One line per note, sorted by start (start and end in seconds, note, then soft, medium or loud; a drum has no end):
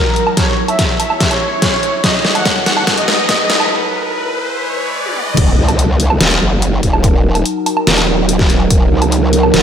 0.00 0.35 F#3 medium
0.00 0.35 D#4 medium
0.00 0.29 A#4 loud
0.00 0.35 A#4 medium
0.00 riser medium
0.16 closed hi-hat medium
0.27 low woodblock medium
0.37 2.02 G#3 medium
0.37 2.02 E4 medium
0.37 0.53 C#5 loud
0.37 2.02 C#5 medium
0.37 kick loud
0.37 snare medium
0.37 closed hi-hat medium
0.68 0.84 E5 medium
0.68 closed hi-hat medium
0.68 low woodblock medium
0.79 kick loud
0.79 snare medium
0.79 closed hi-hat medium
1.00 1.15 E5 loud
1.00 open hi-hat medium
1.00 low woodblock medium
1.10 low woodblock medium
1.20 kick loud
1.20 snare medium
1.20 closed hi-hat medium
1.31 1.95 C#5 medium
1.31 closed hi-hat medium
1.31 low woodblock soft
1.62 kick loud
1.62 snare medium
1.62 closed hi-hat medium
1.83 closed hi-hat medium
2.04 3.69 F#3 medium
2.04 3.69 D#4 medium
2.04 5.34 B4 medium
2.04 2.20 D#5 loud
2.04 kick loud
2.04 snare medium
2.04 closed hi-hat medium
2.25 snare medium
2.35 2.51 F#5 medium
2.35 closed hi-hat medium
2.35 low woodblock medium
2.45 kick medium
2.45 snare medium
2.45 closed hi-hat medium
2.66 2.82 F#5 loud
2.66 snare medium
2.66 open hi-hat medium
2.77 low woodblock medium
2.87 kick loud
2.87 snare medium
2.87 closed hi-hat medium
2.98 3.62 D#5 medium
2.98 closed hi-hat medium
3.08 snare medium
3.29 kick loud
3.29 snare medium
3.29 closed hi-hat medium
3.50 snare medium
3.50 closed hi-hat medium
3.60 low woodblock medium
3.71 5.35 G#3 medium
3.71 5.35 E4 medium
5.06 high tom medium
5.16 mid tom medium
5.27 mid tom medium
5.37 5.56 D#1 medium
5.37 9.63 F#3 medium
5.37 9.63 D#4 medium
5.37 9.63 A#4 loud
5.37 kick loud
5.37 closed hi-hat medium
5.37 crash loud
5.37 impact medium
5.58 6.19 C#2 loud
5.69 closed hi-hat medium
5.69 low woodblock medium
5.79 closed hi-hat medium
6.00 open hi-hat loud
6.10 low woodblock medium
6.21 6.40 D#1 medium
6.21 snare loud
6.21 closed hi-hat medium
6.31 closed hi-hat medium
6.41 6.81 F#1 loud
6.62 closed hi-hat medium
6.83 7.44 D#1 loud
6.83 kick medium
6.83 closed hi-hat medium
6.93 low woodblock medium
7.04 kick loud
7.04 closed hi-hat medium
7.35 closed hi-hat medium
7.35 low woodblock medium
7.46 closed hi-hat medium
7.66 open hi-hat medium
7.66 low woodblock medium
7.77 low woodblock medium
7.87 8.48 D#1 loud
7.87 snare loud
7.87 closed hi-hat medium
7.98 closed hi-hat medium
7.98 low woodblock soft
8.29 closed hi-hat medium
8.39 kick loud
8.39 snare soft
8.50 8.69 D#1 medium
8.50 closed hi-hat medium
8.70 8.90 D#1 loud
8.70 kick loud
8.70 closed hi-hat medium
8.91 9.52 C#2 loud
9.02 closed hi-hat medium
9.02 low woodblock medium
9.12 closed hi-hat medium
9.33 open hi-hat medium
9.43 low woodblock medium
9.54 9.63 D#1 loud
9.54 snare loud
9.54 closed hi-hat medium